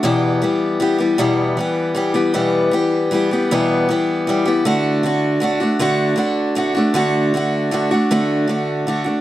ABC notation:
X:1
M:6/8
L:1/16
Q:3/8=52
K:Em
V:1 name="Steel-string acoustic guitar"
[E,,B,,E,G,B,G]2 [E,G,B,G]2 [E,G,B,G] [E,G,B,G] [E,,B,,E,G,B,G]2 [E,G,B,G]2 [E,G,B,G] [E,G,B,G] | [E,,B,,E,G,B,G]2 [E,G,B,G]2 [E,G,B,G] [E,G,B,G] [E,,B,,E,G,B,G]2 [E,G,B,G]2 [E,G,B,G] [E,G,B,G] | [D,A,DF]2 [D,A,DF]2 [D,A,DF] [A,DF] [D,A,DF]2 [D,A,DF]2 [D,A,DF] [A,DF] | [D,A,DF]2 [D,A,DF]2 [D,A,DF] [A,DF] [D,A,DF]2 [D,A,DF]2 [D,A,DF] [A,DF] |]